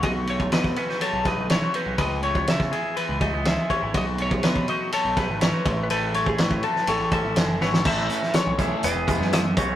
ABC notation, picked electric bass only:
X:1
M:4/4
L:1/16
Q:1/4=123
K:Alyd
V:1 name="Picked electric bass" clef=bass
B,,,4 B,,2 z3 B,,,2 B,,,2 z2 B,,, | C,,4 C,2 z3 C,,2 C,,2 z2 G,,, | B,,,4 B,,2 z3 B,,,2 G,,,2 z A,,,2- | A,,,4 A,,2 z2 A,,, A,,,2 A,,, F,,,2 G,,,2 |
A,,,2 z3 B,,,2 z E,,, E,,, E,,, F,,3 B,,,2 |]